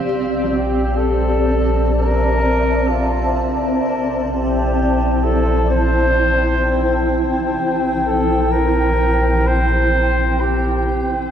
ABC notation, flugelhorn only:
X:1
M:4/4
L:1/16
Q:1/4=64
K:Bblyd
V:1 name="Flugelhorn"
z2 G2 A4 B4 F3 z | z2 G4 A2 c6 z2 | z2 A2 B4 c4 G3 z |]